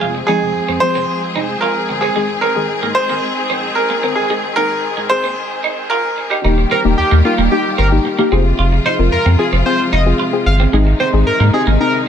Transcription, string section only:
0.00 2.14 F3 medium
0.00 6.40 G#3 medium
0.00 6.41 C4 medium
0.00 6.40 G#4 medium
2.16 6.40 D#3 medium
6.45 8.30 D#3 medium
6.45 8.30 G3 medium
6.45 8.30 A#3 medium
6.45 8.30 G4 medium
8.32 12.08 C3 medium
8.32 10.71 F3 medium
8.32 12.08 G#3 medium
8.32 10.71 F4 medium
10.73 12.08 D#3 medium
10.73 12.08 D#4 medium

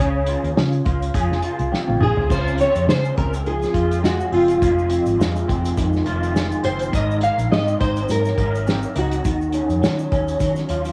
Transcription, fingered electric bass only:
0.00 0.35 C#2 loud
0.43 0.54 D#2 medium
0.57 0.80 C#3 medium
0.86 1.09 C#2 medium
1.14 1.27 F2 medium
1.30 1.41 F1 medium
1.59 1.70 C2 medium
1.88 1.98 A#1 medium
2.01 2.14 A#1 medium
2.17 2.28 C2 medium
2.30 2.66 C#2 loud
2.75 2.86 F2 medium
2.87 3.11 C#3 medium
3.18 3.64 C#2 medium
3.74 4.21 F2 medium
4.32 4.55 F#1 medium
4.62 4.98 F1 loud
5.06 5.17 G#1 medium
5.19 5.42 F2 medium
5.49 5.72 F1 medium
5.77 6.00 F2 loud
6.05 6.52 F1 medium
6.64 6.87 F#1 medium
6.93 7.29 G#1 loud
7.38 7.48 A#1 medium
7.52 7.75 G#2 medium
7.81 8.04 G#1 medium
8.09 8.32 G#2 loud
8.38 8.84 G#1 medium
8.96 9.19 C#2 medium
9.25 9.61 D#2 loud
9.69 9.80 F2 medium
9.82 10.05 D#3 medium
10.12 10.35 D#2 medium
10.40 10.63 D#3 medium
10.69 10.92 D#2 medium

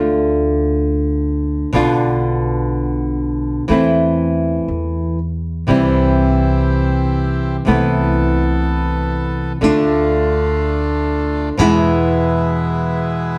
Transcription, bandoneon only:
5.68 7.57 C4 medium
5.68 7.57 E4 soft
5.68 7.57 G4 medium
7.66 9.53 B3 soft
7.66 9.53 A4 medium
9.62 11.49 A3 medium
9.62 11.49 D4 medium
9.62 11.49 F4 medium
11.59 13.38 G#3 medium
11.59 13.38 B3 medium
11.59 13.38 E4 medium

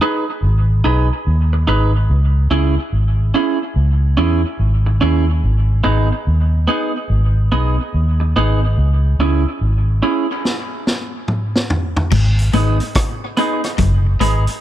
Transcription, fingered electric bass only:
0.43 0.82 G#1 loud
0.85 1.09 B1 medium
1.27 1.66 D#2 medium
1.68 2.07 G#1 medium
2.10 2.49 C#2 medium
2.51 2.76 C#2 loud
2.93 3.32 G#1 medium
3.76 4.15 C#2 loud
4.18 4.43 E2 medium
4.59 4.99 G#1 medium
5.02 5.41 D#2 medium
5.44 5.83 G#1 loud
5.85 6.10 G#1 medium
6.27 6.66 D#2 medium
7.10 7.49 G#1 medium
7.52 7.77 B1 medium
7.94 8.33 D#2 medium
8.36 8.75 G#1 medium
8.78 9.17 C#2 loud
9.19 9.44 C#2 medium
9.61 10.00 G#1 medium
12.12 12.51 G#1 loud
12.54 12.79 G#1 loud
13.79 14.18 F#1 medium
14.20 14.46 G#1 medium

